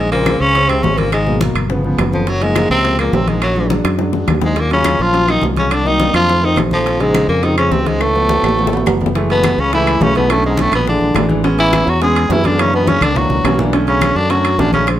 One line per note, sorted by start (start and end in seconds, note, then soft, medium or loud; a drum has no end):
0.00 0.35 A#1 medium
0.00 0.11 G#2 medium
0.00 0.11 G#3 medium
0.11 0.41 A#2 medium
0.11 0.22 C#3 medium
0.11 0.23 G#3 medium
0.11 0.42 A#3 medium
0.11 0.23 C4 medium
0.11 high bongo soft
0.11 high timbale medium
0.26 0.47 C#3 medium
0.26 0.47 G#3 medium
0.26 0.48 C4 medium
0.26 high bongo medium
0.26 high conga medium
0.26 high timbale medium
0.26 low timbale soft
0.26 claves medium
0.39 0.81 C#2 medium
0.39 0.70 C#3 medium
0.39 0.71 C#4 loud
0.39 high bongo soft
0.39 high conga soft
0.54 0.65 C#3 medium
0.54 0.65 G#3 medium
0.54 0.66 C4 medium
0.54 high bongo medium
0.54 high conga soft
0.54 high timbale medium
0.68 0.84 C3 medium
0.68 1.09 C#3 medium
0.68 1.10 G#3 medium
0.68 0.84 C4 medium
0.68 1.10 C4 medium
0.68 high conga soft
0.68 high timbale medium
0.68 claves medium
0.83 1.50 G#1 medium
0.83 0.98 C#3 medium
0.83 0.99 C#4 medium
0.83 high bongo soft
0.83 low bongo medium
0.83 high conga medium
0.83 low timbale medium
0.97 1.12 A#2 medium
0.97 1.12 A#3 medium
0.97 high bongo soft
0.97 high conga medium
0.97 high timbale medium
1.12 1.39 G#2 medium
1.12 1.39 G#3 medium
1.12 high bongo medium
1.12 high conga soft
1.12 high timbale medium
1.12 claves medium
1.26 1.37 B2 medium
1.26 1.37 F#3 medium
1.26 1.38 A#3 medium
1.26 high bongo soft
1.26 high conga soft
1.40 1.61 B2 medium
1.40 1.62 F#3 medium
1.40 1.62 A#3 medium
1.40 high bongo medium
1.40 high conga medium
1.40 high timbale medium
1.40 low timbale soft
1.55 1.95 G1 medium
1.55 high bongo soft
1.55 high conga soft
1.55 high timbale medium
1.55 claves medium
1.69 1.80 C#3 medium
1.69 1.80 F3 medium
1.69 1.81 B3 medium
1.69 high bongo medium
1.69 high conga soft
1.83 2.24 C#3 medium
1.83 2.25 F3 medium
1.83 2.25 B3 medium
1.83 high conga soft
1.98 2.65 F#1 medium
1.98 high bongo soft
1.98 low bongo medium
1.98 high conga medium
1.98 high timbale medium
1.98 low timbale medium
1.98 claves medium
2.13 2.29 F2 medium
2.13 2.30 F3 medium
2.13 high bongo soft
2.13 high conga medium
2.27 2.43 F#2 medium
2.27 2.44 F#3 medium
2.27 high bongo medium
2.27 high conga soft
2.27 high timbale medium
2.41 2.70 G#2 medium
2.41 2.51 F3 medium
2.41 2.52 G#3 medium
2.41 2.70 G#3 medium
2.41 2.52 A#3 medium
2.41 high bongo soft
2.41 high conga soft
2.41 high timbale medium
2.55 2.75 F3 medium
2.55 2.76 G#3 medium
2.55 2.76 A#3 medium
2.55 high bongo medium
2.55 high conga medium
2.55 high timbale medium
2.55 low timbale soft
2.55 claves medium
2.70 3.10 C#2 medium
2.70 2.97 C3 medium
2.70 2.97 C4 loud
2.70 high bongo soft
2.70 high conga soft
2.84 2.94 F3 medium
2.84 2.95 G#3 soft
2.84 2.95 A#3 medium
2.84 high bongo medium
2.84 high conga soft
2.84 high timbale medium
2.99 3.16 A#2 medium
2.99 3.39 F3 medium
2.99 3.39 G#3 medium
2.99 3.16 A#3 medium
2.99 3.40 A#3 medium
2.99 high conga soft
2.99 high timbale medium
2.99 claves soft
3.13 3.79 A#1 medium
3.13 3.29 C3 medium
3.13 3.30 C4 medium
3.13 high bongo soft
3.13 low bongo medium
3.13 high conga medium
3.13 low timbale medium
3.27 3.42 G#2 medium
3.27 3.42 G#3 medium
3.27 high bongo soft
3.27 high conga medium
3.27 high timbale medium
3.42 3.69 F#2 medium
3.42 3.69 F#3 medium
3.42 high bongo medium
3.42 high conga soft
3.42 high timbale medium
3.42 claves medium
3.55 3.66 F#3 medium
3.55 3.66 G#3 medium
3.55 3.67 D4 medium
3.55 high bongo soft
3.55 high conga soft
3.70 3.90 F#3 medium
3.70 3.91 G#3 medium
3.70 3.91 D4 medium
3.70 high bongo medium
3.70 high conga medium
3.70 high timbale soft
3.70 low timbale soft
3.84 4.25 F#2 medium
3.84 high bongo medium
3.84 high conga soft
3.84 high timbale loud
3.84 claves soft
3.99 4.09 F#3 medium
3.99 4.09 G#3 medium
3.99 4.10 D4 medium
3.99 high bongo medium
3.99 high conga soft
4.12 4.53 F#3 medium
4.12 4.53 G#3 medium
4.12 4.54 D4 medium
4.12 low bongo medium
4.12 high conga soft
4.28 4.94 D#2 medium
4.28 low bongo medium
4.28 high conga medium
4.28 high timbale medium
4.28 low timbale medium
4.28 claves medium
4.41 4.59 G#2 medium
4.41 4.61 G#3 medium
4.41 low bongo loud
4.41 high conga medium
4.56 4.71 A#2 medium
4.56 4.72 A#3 medium
4.56 high bongo medium
4.56 high conga soft
4.56 high timbale medium
4.70 5.03 C#3 medium
4.70 4.81 F#3 medium
4.70 4.81 C#4 medium
4.70 5.04 C#4 medium
4.70 4.81 F4 medium
4.70 high bongo soft
4.70 high conga soft
4.70 high timbale medium
4.84 5.05 F#3 medium
4.84 5.05 C#4 medium
4.84 5.06 F4 medium
4.84 high bongo medium
4.84 high conga medium
4.84 high timbale medium
4.84 low timbale medium
4.84 claves medium
4.99 5.39 A#1 medium
4.99 5.30 F3 medium
4.99 5.31 F4 loud
4.99 high bongo soft
4.99 high conga soft
5.13 5.23 F#3 medium
5.13 5.24 C#4 medium
5.13 5.24 F4 medium
5.13 high bongo medium
5.13 high conga soft
5.13 high timbale medium
5.27 5.43 D#3 medium
5.27 5.68 F#3 medium
5.27 5.69 C#4 medium
5.27 5.43 D#4 medium
5.27 5.69 F4 medium
5.27 high conga soft
5.27 high timbale medium
5.27 claves medium
5.42 6.09 C2 medium
5.42 high bongo soft
5.42 low bongo medium
5.42 high conga medium
5.42 low timbale medium
5.56 5.73 C#3 medium
5.56 5.74 C#4 medium
5.56 high bongo soft
5.56 high conga medium
5.56 high timbale medium
5.71 5.87 D3 medium
5.71 5.89 D4 medium
5.71 high bongo medium
5.71 high conga soft
5.71 high timbale medium
5.71 claves medium
5.84 6.14 D#3 medium
5.84 5.95 F#3 medium
5.84 5.95 A#3 medium
5.84 5.96 D#4 medium
5.84 6.15 D#4 medium
5.84 high bongo soft
5.84 high conga soft
5.99 6.19 F#3 medium
5.99 6.20 A#3 medium
5.99 6.20 D4 medium
5.99 high bongo medium
5.99 high conga medium
5.99 high timbale medium
5.99 low timbale soft
6.13 6.54 F2 medium
6.13 6.45 F3 medium
6.13 6.46 F4 loud
6.13 high bongo soft
6.13 high conga soft
6.13 high timbale loud
6.13 claves medium
6.28 6.38 D#3 medium
6.28 6.39 A3 medium
6.28 6.39 C4 medium
6.28 high bongo medium
6.28 high conga soft
6.42 6.83 D#3 medium
6.42 6.58 D#3 medium
6.42 6.83 A3 medium
6.42 6.84 C4 medium
6.42 6.58 D#4 medium
6.42 high conga soft
6.56 7.23 A#1 medium
6.56 high bongo soft
6.56 low bongo medium
6.56 high conga medium
6.56 high timbale medium
6.56 low timbale medium
6.56 claves medium
6.71 7.02 F2 medium
6.71 7.02 F3 medium
6.71 high bongo soft
6.71 high conga medium
6.86 high bongo medium
6.86 high conga soft
6.86 high timbale medium
6.99 7.28 G#2 medium
6.99 7.10 C#3 medium
6.99 7.10 G#3 medium
6.99 7.28 G#3 medium
6.99 7.11 C4 medium
6.99 high bongo soft
6.99 high conga soft
6.99 high timbale medium
7.13 7.34 C#3 medium
7.13 7.34 G#3 medium
7.13 7.35 C4 medium
7.13 high bongo medium
7.13 high conga medium
7.13 high timbale medium
7.13 low timbale medium
7.13 claves medium
7.28 7.68 F2 medium
7.28 7.45 A#2 medium
7.28 7.45 A#3 medium
7.28 high bongo soft
7.42 7.53 C#3 medium
7.42 7.58 D#3 medium
7.42 7.53 G#3 medium
7.42 7.54 C4 medium
7.42 7.57 D#4 medium
7.42 high bongo medium
7.42 high conga soft
7.42 high timbale medium
7.56 7.97 C#3 medium
7.56 7.74 C#3 medium
7.56 7.98 G#3 medium
7.56 7.98 C4 medium
7.56 7.73 C#4 medium
7.56 high conga soft
7.56 high timbale medium
7.56 claves medium
7.71 8.38 C#2 medium
7.71 7.87 C3 medium
7.71 7.89 C4 medium
7.71 high bongo soft
7.71 low bongo medium
7.71 high conga medium
7.71 low timbale medium
7.85 8.01 G#2 medium
7.85 8.03 G#3 medium
7.85 high bongo soft
7.85 high conga medium
7.85 high timbale medium
8.00 9.01 A2 medium
8.00 9.01 A3 medium
8.00 high bongo medium
8.00 high conga soft
8.00 high timbale medium
8.00 claves medium
8.13 8.24 F3 medium
8.13 8.25 A3 medium
8.13 8.25 B3 medium
8.13 high bongo soft
8.13 high conga soft
8.28 8.49 F3 medium
8.28 8.49 A3 medium
8.28 8.50 B3 medium
8.28 high bongo medium
8.28 high conga medium
8.28 low timbale medium
8.43 8.83 A1 medium
8.43 high conga soft
8.43 low timbale medium
8.43 claves medium
8.48 low bongo medium
8.56 8.67 F3 medium
8.56 8.68 A3 medium
8.56 8.68 B3 medium
8.56 high conga soft
8.56 low timbale medium
8.67 9.12 F3 medium
8.67 low bongo loud
8.72 9.12 A3 medium
8.72 9.13 B3 medium
8.72 high conga soft
8.72 low timbale medium
8.77 low bongo medium
8.86 9.53 F#1 medium
8.86 low bongo medium
8.86 high conga medium
8.86 low timbale loud
8.86 claves medium
9.01 high conga medium
9.01 low timbale medium
9.06 low bongo loud
9.15 9.55 E3 medium
9.15 9.56 G#3 medium
9.15 9.56 A3 medium
9.15 high bongo medium
9.15 high conga soft
9.15 high timbale medium
9.30 9.61 B2 medium
9.30 9.62 B3 medium
9.30 high bongo soft
9.30 high conga soft
9.30 high timbale medium
9.44 high bongo medium
9.44 high conga medium
9.44 high timbale medium
9.44 low timbale medium
9.44 claves medium
9.58 9.98 C#2 medium
9.58 9.73 C#3 medium
9.58 9.74 C#4 medium
9.58 high bongo soft
9.58 high conga soft
9.73 9.93 E3 medium
9.73 10.04 E3 medium
9.73 9.93 G#3 medium
9.73 9.94 A3 loud
9.73 10.04 E4 medium
9.73 high bongo medium
9.73 high conga soft
9.73 high timbale medium
9.87 high conga soft
9.87 high timbale medium
9.87 claves medium
10.00 10.67 B1 medium
10.00 10.16 C#3 medium
10.00 10.11 E3 medium
10.00 10.11 G#3 medium
10.00 10.12 A3 medium
10.00 10.16 C#4 medium
10.00 high bongo soft
10.00 low bongo medium
10.00 high conga medium
10.00 low timbale medium
10.15 10.34 B2 medium
10.15 10.25 E3 medium
10.15 10.26 G#3 medium
10.15 10.26 A3 medium
10.15 10.32 B3 medium
10.15 high bongo soft
10.15 high conga medium
10.15 high timbale medium
10.30 10.45 A2 medium
10.30 10.70 D3 medium
10.30 10.70 A3 medium
10.30 10.45 A3 loud
10.30 10.71 C#4 medium
10.30 high bongo medium
10.30 high conga soft
10.30 high timbale loud
10.30 claves medium
10.44 10.61 G#2 medium
10.44 10.62 G#3 medium
10.44 high bongo soft
10.44 high conga soft
10.57 10.74 A2 medium
10.57 10.74 A3 medium
10.57 high bongo medium
10.57 high conga medium
10.57 high timbale medium
10.57 low timbale soft
10.72 10.99 A#1 medium
10.72 10.87 B2 medium
10.72 10.87 B3 medium
10.72 high bongo soft
10.72 high conga soft
10.72 low conga medium
10.72 high timbale loud
10.72 claves medium
10.86 11.28 D3 medium
10.86 11.07 E3 medium
10.86 11.07 G#3 medium
10.86 11.08 D4 medium
10.86 11.28 D4 medium
10.86 high bongo medium
10.86 high conga soft
11.01 11.14 A#1 medium
11.01 high conga soft
11.14 11.82 A1 medium
11.14 11.25 E3 medium
11.14 11.26 G#3 medium
11.14 11.26 D4 medium
11.14 high bongo soft
11.14 low bongo medium
11.14 high conga medium
11.14 high timbale loud
11.14 low timbale medium
11.14 claves medium
11.29 11.40 E3 loud
11.29 11.40 G#3 medium
11.29 11.40 D4 loud
11.29 high bongo soft
11.29 high conga medium
11.43 11.84 G#3 medium
11.43 11.84 B3 medium
11.43 11.85 C#4 loud
11.43 high bongo medium
11.43 high conga soft
11.43 high timbale medium
11.58 11.89 E3 medium
11.58 11.91 E4 medium
11.58 high bongo soft
11.58 high conga soft
11.58 high timbale medium
11.73 high bongo medium
11.73 high conga medium
11.73 high timbale medium
11.73 low timbale medium
11.73 claves medium
11.87 12.27 E2 medium
11.87 12.01 F#3 medium
11.87 12.03 F#4 medium
11.87 high bongo soft
11.87 high conga soft
12.01 12.32 G#3 medium
12.01 12.22 G#3 medium
12.01 12.22 B3 medium
12.01 12.22 C#4 medium
12.01 12.34 G#4 medium
12.01 high bongo medium
12.01 high conga soft
12.01 high timbale medium
12.16 high conga soft
12.16 high timbale medium
12.16 claves medium
12.29 12.96 F#2 medium
12.29 12.46 E3 medium
12.29 12.40 G#3 medium
12.29 12.40 B3 medium
12.29 12.41 C#4 medium
12.29 12.47 E4 medium
12.29 high bongo soft
12.29 low bongo medium
12.29 high conga medium
12.29 low timbale medium
12.44 12.60 D3 medium
12.44 12.54 G#3 medium
12.44 12.55 B3 medium
12.44 12.55 C#4 medium
12.44 12.62 D4 medium
12.44 high bongo soft
12.44 high conga medium
12.44 high timbale medium
12.59 12.73 C#3 medium
12.59 12.99 E3 medium
12.59 12.99 A#3 medium
12.59 12.74 C#4 medium
12.59 13.00 D4 medium
12.59 high bongo medium
12.59 high conga soft
12.59 high timbale medium
12.59 claves medium
12.73 12.89 B2 medium
12.73 12.90 B3 medium
12.73 high bongo soft
12.73 high conga soft
12.87 13.04 C#3 medium
12.87 13.04 C#4 medium
12.87 high bongo medium
12.87 high conga medium
12.87 high timbale medium
12.87 low timbale soft
13.01 13.28 C#2 medium
13.01 13.18 D3 medium
13.01 13.18 D4 medium
13.01 high bongo soft
13.01 high conga medium
13.01 high timbale loud
13.01 claves medium
13.16 13.36 E3 medium
13.16 13.59 F#3 medium
13.16 13.36 A#3 medium
13.16 13.37 D4 medium
13.16 13.60 F#4 medium
13.16 high bongo medium
13.16 low conga medium
13.30 13.44 C#2 medium
13.30 low conga medium
13.44 14.11 B1 medium
13.44 13.55 E3 medium
13.44 13.55 A#3 medium
13.44 13.55 C#4 medium
13.44 high bongo soft
13.44 low bongo medium
13.44 high timbale loud
13.44 low timbale medium
13.44 claves medium
13.58 13.69 E3 loud
13.58 13.69 A#3 medium
13.58 13.70 D4 loud
13.58 high bongo soft
13.58 low conga medium
13.72 14.13 D3 medium
13.72 14.13 A3 medium
13.72 14.14 C#4 loud
13.72 high bongo medium
13.72 high conga soft
13.72 high timbale medium
13.87 14.18 C#3 medium
13.87 14.18 C#4 medium
13.87 high bongo soft
13.87 high conga soft
13.87 high timbale medium
14.01 high bongo medium
14.01 high conga medium
14.01 high timbale medium
14.01 low timbale medium
14.01 claves medium
14.15 14.56 F#2 medium
14.15 14.32 D3 medium
14.15 14.32 D4 medium
14.15 high bongo soft
14.15 high conga soft
14.29 14.50 D3 medium
14.29 14.61 F#3 medium
14.29 14.50 A3 medium
14.29 14.51 C#4 medium
14.29 14.61 F#4 medium
14.29 high bongo medium
14.29 high conga soft
14.29 high timbale medium
14.44 high conga soft
14.44 high timbale medium
14.44 claves medium
14.58 15.00 A#1 medium
14.58 14.69 D3 medium
14.58 14.73 D3 medium
14.58 14.69 A3 medium
14.58 14.69 C#4 loud
14.58 14.73 D4 medium
14.58 high bongo soft
14.58 low bongo medium
14.58 high conga medium
14.58 low timbale medium
14.72 14.87 C#3 medium
14.72 14.83 D3 medium
14.72 14.83 A3 medium
14.72 14.84 C#4 medium
14.72 14.87 C#4 medium
14.72 high bongo soft
14.72 high conga medium
14.72 high timbale medium
14.86 15.00 D3 medium
14.86 15.00 G#3 medium
14.86 15.00 C4 medium
14.86 high bongo medium
14.86 high conga soft
14.86 high timbale medium
14.86 claves medium